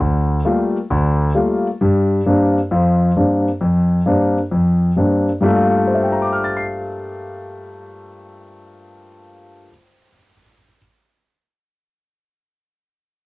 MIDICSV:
0, 0, Header, 1, 2, 480
1, 0, Start_track
1, 0, Tempo, 451807
1, 1907, Time_signature, 4, 2, 24, 8
1, 14078, End_track
2, 0, Start_track
2, 0, Title_t, "Grand piano"
2, 0, Program_c, 0, 0
2, 1, Note_on_c, 0, 38, 60
2, 411, Note_off_c, 0, 38, 0
2, 475, Note_on_c, 0, 55, 51
2, 477, Note_on_c, 0, 57, 44
2, 481, Note_on_c, 0, 65, 51
2, 484, Note_on_c, 0, 58, 43
2, 807, Note_off_c, 0, 55, 0
2, 808, Note_off_c, 0, 57, 0
2, 810, Note_off_c, 0, 65, 0
2, 811, Note_off_c, 0, 58, 0
2, 960, Note_on_c, 0, 38, 66
2, 1371, Note_off_c, 0, 38, 0
2, 1430, Note_on_c, 0, 55, 38
2, 1434, Note_on_c, 0, 58, 39
2, 1436, Note_on_c, 0, 57, 36
2, 1440, Note_on_c, 0, 65, 52
2, 1764, Note_off_c, 0, 55, 0
2, 1766, Note_off_c, 0, 58, 0
2, 1767, Note_off_c, 0, 57, 0
2, 1770, Note_off_c, 0, 65, 0
2, 1922, Note_on_c, 0, 43, 69
2, 2332, Note_off_c, 0, 43, 0
2, 2401, Note_on_c, 0, 43, 49
2, 2403, Note_on_c, 0, 58, 48
2, 2406, Note_on_c, 0, 60, 40
2, 2411, Note_on_c, 0, 62, 54
2, 2730, Note_off_c, 0, 43, 0
2, 2731, Note_off_c, 0, 58, 0
2, 2733, Note_off_c, 0, 60, 0
2, 2735, Note_off_c, 0, 62, 0
2, 2880, Note_on_c, 0, 41, 66
2, 2881, Note_on_c, 0, 53, 61
2, 3290, Note_off_c, 0, 41, 0
2, 3291, Note_off_c, 0, 53, 0
2, 3357, Note_on_c, 0, 43, 41
2, 3360, Note_on_c, 0, 60, 38
2, 3361, Note_on_c, 0, 58, 38
2, 3362, Note_on_c, 0, 62, 48
2, 3688, Note_off_c, 0, 43, 0
2, 3689, Note_off_c, 0, 60, 0
2, 3690, Note_off_c, 0, 58, 0
2, 3690, Note_off_c, 0, 62, 0
2, 3833, Note_on_c, 0, 41, 61
2, 4246, Note_off_c, 0, 41, 0
2, 4313, Note_on_c, 0, 43, 43
2, 4315, Note_on_c, 0, 58, 46
2, 4321, Note_on_c, 0, 60, 45
2, 4324, Note_on_c, 0, 62, 54
2, 4645, Note_off_c, 0, 43, 0
2, 4646, Note_off_c, 0, 58, 0
2, 4649, Note_off_c, 0, 60, 0
2, 4651, Note_off_c, 0, 62, 0
2, 4798, Note_on_c, 0, 41, 60
2, 5209, Note_off_c, 0, 41, 0
2, 5273, Note_on_c, 0, 43, 43
2, 5281, Note_on_c, 0, 58, 40
2, 5284, Note_on_c, 0, 60, 41
2, 5285, Note_on_c, 0, 62, 49
2, 5605, Note_off_c, 0, 43, 0
2, 5609, Note_off_c, 0, 58, 0
2, 5611, Note_off_c, 0, 60, 0
2, 5611, Note_off_c, 0, 62, 0
2, 5743, Note_on_c, 0, 43, 57
2, 5749, Note_on_c, 0, 55, 48
2, 5757, Note_on_c, 0, 58, 56
2, 5766, Note_on_c, 0, 65, 57
2, 5773, Note_on_c, 0, 57, 66
2, 6237, Note_on_c, 0, 72, 39
2, 6317, Note_on_c, 0, 76, 39
2, 6404, Note_on_c, 0, 79, 39
2, 6500, Note_on_c, 0, 82, 35
2, 6607, Note_on_c, 0, 86, 37
2, 6722, Note_on_c, 0, 89, 31
2, 6844, Note_on_c, 0, 93, 32
2, 6977, Note_on_c, 0, 96, 29
2, 10258, Note_off_c, 0, 43, 0
2, 10264, Note_off_c, 0, 55, 0
2, 10272, Note_off_c, 0, 58, 0
2, 10281, Note_off_c, 0, 65, 0
2, 10288, Note_off_c, 0, 57, 0
2, 10710, Note_off_c, 0, 72, 0
2, 10789, Note_off_c, 0, 76, 0
2, 10877, Note_off_c, 0, 79, 0
2, 10972, Note_off_c, 0, 82, 0
2, 11079, Note_off_c, 0, 86, 0
2, 11194, Note_off_c, 0, 89, 0
2, 11316, Note_off_c, 0, 93, 0
2, 11449, Note_off_c, 0, 96, 0
2, 14078, End_track
0, 0, End_of_file